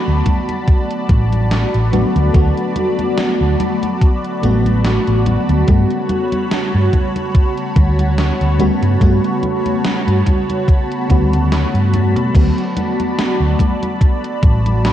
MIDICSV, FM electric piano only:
0, 0, Header, 1, 2, 480
1, 0, Start_track
1, 0, Key_signature, 2, "major"
1, 0, Tempo, 833333
1, 1351, Time_signature, 4, 2, 24, 8
1, 8599, End_track
2, 0, Start_track
2, 0, Title_t, "FM electric piano"
2, 0, Program_c, 0, 5
2, 0, Control_c, 0, 64, 127
2, 0, Note_on_c, 0, 50, 78
2, 0, Note_on_c, 0, 54, 72
2, 0, Note_on_c, 0, 57, 71
2, 0, Note_on_c, 0, 59, 70
2, 0, Note_on_c, 0, 66, 82
2, 1080, Note_off_c, 0, 50, 0
2, 1082, Note_off_c, 0, 54, 0
2, 1085, Note_off_c, 0, 57, 0
2, 1086, Note_off_c, 0, 59, 0
2, 1088, Note_off_c, 0, 66, 0
2, 1106, Note_on_c, 0, 50, 88
2, 1108, Note_on_c, 0, 54, 80
2, 1110, Note_on_c, 0, 57, 80
2, 1111, Note_on_c, 0, 59, 80
2, 1113, Note_on_c, 0, 66, 100
2, 1323, Note_off_c, 0, 50, 0
2, 1324, Note_off_c, 0, 54, 0
2, 1325, Note_off_c, 0, 57, 0
2, 1325, Note_off_c, 0, 59, 0
2, 1326, Note_off_c, 0, 66, 0
2, 1340, Note_on_c, 0, 50, 96
2, 1344, Note_on_c, 0, 54, 88
2, 1349, Note_on_c, 0, 57, 88
2, 1353, Note_on_c, 0, 59, 88
2, 1358, Note_on_c, 0, 66, 106
2, 2520, Note_off_c, 0, 50, 0
2, 2522, Note_off_c, 0, 54, 0
2, 2524, Note_off_c, 0, 57, 0
2, 2526, Note_off_c, 0, 59, 0
2, 2529, Note_off_c, 0, 66, 0
2, 2543, Note_on_c, 0, 50, 81
2, 2548, Note_on_c, 0, 54, 74
2, 2552, Note_on_c, 0, 57, 75
2, 2556, Note_on_c, 0, 59, 76
2, 2561, Note_on_c, 0, 66, 90
2, 3241, Note_off_c, 0, 50, 0
2, 3243, Note_off_c, 0, 54, 0
2, 3246, Note_off_c, 0, 57, 0
2, 3248, Note_off_c, 0, 59, 0
2, 3250, Note_off_c, 0, 66, 0
2, 3262, Note_on_c, 0, 49, 76
2, 3266, Note_on_c, 0, 55, 71
2, 3271, Note_on_c, 0, 57, 71
2, 3275, Note_on_c, 0, 59, 70
2, 3279, Note_on_c, 0, 66, 88
2, 3280, Control_c, 0, 64, 0
2, 3373, Control_c, 0, 64, 127
2, 4921, Note_off_c, 0, 49, 0
2, 4923, Note_off_c, 0, 55, 0
2, 4925, Note_off_c, 0, 57, 0
2, 4927, Note_off_c, 0, 59, 0
2, 4929, Note_off_c, 0, 66, 0
2, 4946, Note_on_c, 0, 49, 87
2, 4949, Note_on_c, 0, 55, 80
2, 4951, Note_on_c, 0, 57, 81
2, 4954, Note_on_c, 0, 59, 79
2, 4956, Note_on_c, 0, 66, 98
2, 5163, Note_off_c, 0, 49, 0
2, 5164, Note_off_c, 0, 55, 0
2, 5165, Note_off_c, 0, 57, 0
2, 5167, Note_off_c, 0, 59, 0
2, 5168, Note_off_c, 0, 66, 0
2, 5183, Note_on_c, 0, 49, 97
2, 5186, Note_on_c, 0, 55, 89
2, 5190, Note_on_c, 0, 57, 85
2, 5196, Note_on_c, 0, 59, 88
2, 5199, Note_on_c, 0, 66, 106
2, 6361, Note_off_c, 0, 49, 0
2, 6363, Note_off_c, 0, 55, 0
2, 6365, Note_off_c, 0, 57, 0
2, 6368, Note_off_c, 0, 59, 0
2, 6369, Note_off_c, 0, 66, 0
2, 6381, Note_on_c, 0, 49, 83
2, 6385, Note_on_c, 0, 55, 78
2, 6391, Note_on_c, 0, 57, 77
2, 6393, Note_on_c, 0, 59, 76
2, 6398, Note_on_c, 0, 66, 94
2, 7080, Note_off_c, 0, 49, 0
2, 7082, Note_off_c, 0, 55, 0
2, 7085, Note_off_c, 0, 57, 0
2, 7086, Note_off_c, 0, 59, 0
2, 7089, Note_off_c, 0, 66, 0
2, 7104, Note_on_c, 0, 50, 77
2, 7108, Note_on_c, 0, 54, 72
2, 7112, Note_on_c, 0, 57, 71
2, 7116, Note_on_c, 0, 59, 71
2, 7117, Control_c, 0, 64, 0
2, 7121, Note_on_c, 0, 66, 85
2, 7227, Control_c, 0, 64, 127
2, 8599, Note_off_c, 0, 50, 0
2, 8599, Note_off_c, 0, 54, 0
2, 8599, Note_off_c, 0, 57, 0
2, 8599, Note_off_c, 0, 59, 0
2, 8599, Note_off_c, 0, 66, 0
2, 8599, End_track
0, 0, End_of_file